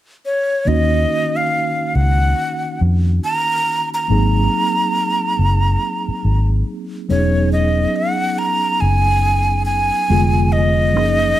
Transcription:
0.25 flute C#5
0.65 fingered electric bass D#2, tine electric piano D#3 A#3 C#4 D#4 F#4, flute D#5
1.36 flute F5
1.95 fingered electric bass C#2, flute F#5
2.81 fingered electric bass F2
3.24 flute A#5
3.94 flute A#5
4.08 fingered electric bass G#1, tine electric piano F#3 A#3 C4 D#4 G#4
5.39 fingered electric bass F#1
6.08 muted fingered electric bass stroke
6.25 fingered electric bass G#1
7.09 fingered electric bass E1, tine electric piano F#3 B3 C#4 D#4 G#4, flute C#5
7.53 flute D#5
7.96 flute F#5
8.39 flute A#5
8.81 fingered electric bass F#1, flute G#5
9.65 flute G#5
10.09 fingered electric bass F1, tine electric piano D3 G#3 B3 F4 G#4
10.52 flute D#5
10.94 fingered electric bass F#1, tine electric piano F3 A#3 C#4 D#4 G#4

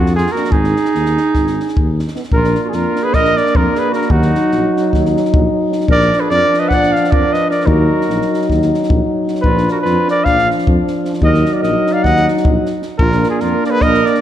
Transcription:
Already playing: tuba F2, clarinet D4, trumpet F#4
0.06 snare
0.16 clarinet F4, trumpet G#4, snare
0.27 snare
0.32 trombone A#3, euphonium D4, clarinet F#4, trumpet A#4, snare
0.44 snare
0.51 tuba G#1, clarinet D#4, trumpet G#4, kick
0.64 snare
0.76 snare
0.85 snare
0.95 tuba D#2, snare
1.06 snare
1.17 snare
1.34 tuba G#1, kick, snare
1.47 snare
1.60 snare
1.68 snare
1.77 tuba D#2, kick
1.99 snare
2.08 snare
2.14 trombone B3, euphonium D#4, snare
2.23 snare
2.32 tuba A#1, trombone A#3, euphonium D4, trumpet A#4, kick
2.36 clarinet F4
2.44 snare
2.55 snare
2.62 clarinet F4 F#4, trumpet A#4
2.69 clarinet F4, trumpet G#4, snare
2.73 tuba F2, trumpet A#4
2.96 snare
3.03 clarinet G#4, trumpet B4
3.13 tuba A#1, clarinet A#4, trumpet D#5, kick, snare
3.25 snare
3.37 clarinet A#4, trumpet D5, snare
3.46 snare
3.55 tuba F2, clarinet F4, trumpet A#4, kick
3.75 clarinet G#4, trumpet B4, snare
3.91 clarinet F#4, snare
3.95 trumpet A#4
4.02 snare
4.10 tuba D#2, trombone F#3, euphonium D#4, clarinet D#4, trumpet F#4, kick
4.22 snare
4.35 snare
4.52 tuba A#1, snare
4.77 snare
4.93 tuba D#2, kick, snare
5.05 snare
5.17 snare
5.25 snare
5.34 tuba A#1, kick
5.72 snare
5.80 snare
5.88 tuba A#1, trombone F3, euphonium D4, clarinet A#4, kick
5.92 trumpet D5
6.01 snare
6.13 snare
6.20 clarinet G#4, trumpet B4
6.30 tuba F2, trumpet D5, snare
6.34 clarinet A#4
6.54 snare
6.59 clarinet B4, trumpet D#5
6.69 tuba A#1, trumpet F#5, kick, snare
6.74 clarinet D5
6.83 snare
6.93 clarinet D5, trumpet F5, snare
7.04 snare
7.11 tuba F2, clarinet A#4, trumpet D5, kick
7.33 clarinet B4, trumpet D#5, snare
7.49 clarinet A#4, trumpet D5, snare
7.60 snare
7.66 tuba D#2, trombone F#3, euphonium D#4, clarinet F#4, trumpet A#4, kick
8.01 snare
8.08 tuba A#1, snare
8.22 snare
8.34 snare
8.42 snare
8.49 tuba D#2, kick, snare
8.62 snare
8.74 snare
8.83 snare
8.89 tuba A#1, kick
9.28 snare
9.35 snare
9.42 tuba A#1, trombone F3, clarinet F4, trumpet B4, kick
9.47 euphonium D4
9.57 snare
9.68 clarinet F#4, trumpet A#4, snare
9.82 tuba F2, clarinet F4, trumpet B4, snare
10.08 clarinet A#4, trumpet D5, snare
10.24 tuba A#1, clarinet D5, trumpet F5, kick, snare
10.39 snare
10.51 snare
10.59 snare
10.67 tuba F2, kick
10.87 snare
11.05 snare
11.14 snare
11.21 tuba D#2, trombone F#3, euphonium D#4, trumpet D#5, kick
11.26 clarinet A#4
11.34 snare
11.46 snare
11.53 clarinet A#4, trumpet D5
11.62 tuba A#1, clarinet A#4, trumpet D#5, snare
11.87 snare
11.92 clarinet D5, trumpet F5
12.04 tuba D#2, clarinet D#5, trumpet F#5, kick, snare
12.16 snare
12.28 snare
12.37 snare
12.45 tuba A#1, kick
12.66 snare
12.82 snare
12.98 tuba A#1, trombone A#3, euphonium D4, clarinet F4, trumpet A#4, kick
13.12 snare
13.24 snare
13.30 clarinet F4, trumpet G#4
13.40 tuba F2, clarinet F4, trumpet A#4, snare
13.64 clarinet A#4, trumpet D5, snare
13.70 clarinet G#4, trumpet B4
13.81 tuba A#1, clarinet A#4, trumpet D#5, kick, snare
13.94 snare
14.06 clarinet A#4, trumpet D5, snare
14.14 snare

